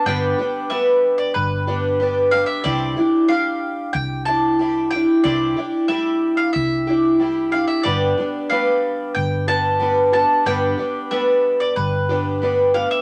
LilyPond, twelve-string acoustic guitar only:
\new Staff \with { instrumentName = "Twelve-string acoustic guitar" } { \time 4/4 \key g \mixolydian \tempo 4 = 92 <g, d g b d' g'>8 <g b d' g'>8 <g b d' g'>4. <g b d' g'>8 <g b d' g'>8 <g b d' g'>8 | <c g d' e' g'>8 <d' e' g'>8 <g d' g'>4. <d' e' g'>8 <g d' e' g'>8 <d' e' g'>8 | <c g d' e' g'>8 <d' e' g'>8 <g d' e' g'>4. <d' e' g'>8 <g d' e' g'>8 <d' e' g'>8 | <g, d g b d' g'>8 <g b d' g'>8 <g b d' g'>4. <g b d' g'>8 <g b d' g'>8 <g b d' g'>8 |
<g, d g b d' g'>8 <g b d' g'>8 <g b d' g'>4. <g b d' g'>8 <g b d' g'>8 <g b d' g'>8 | }